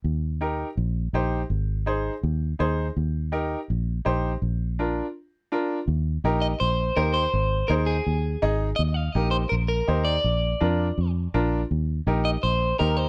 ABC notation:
X:1
M:4/4
L:1/8
Q:1/4=165
K:Eb
V:1 name="Clean electric guitar"
z8 | z8 | z8 | z8 |
z3 e c2 B c- | c2 B A4 z | e f e c B B2 d- | d4- d z3 |
z3 e c2 B c |]
V:2 name="Upright piano"
z2 [EGB] z3 [EGc] z | z2 [EAc] z3 [EAc] z | z2 [EGB] z3 [EGc] z | z2 [DFB] z3 [DFB] z |
z2 [EGB] z3 [EGc] z | z2 [EAc] z3 [EAe] z | z2 [EGB] z3 [EGc] z | z2 [DFB] z3 [DFB] z |
z2 [EGB] z3 [EGB] z |]
V:3 name="Fingered electric bass" clef=bass
E,,4 B,,,2 B,,,2 | A,,,4 E,,2 E,,2 | E,,4 B,,,2 B,,,2 | B,,,4 z4 |
E,,2 B,,,2 B,,,2 E,,2 | A,,,2 E,,2 E,,2 A,,,2 | E,,2 B,,,2 B,,,2 E,,2 | B,,,2 F,,2 F,,2 B,,,2 |
E,,2 B,,,2 B,,,2 E,,2 |]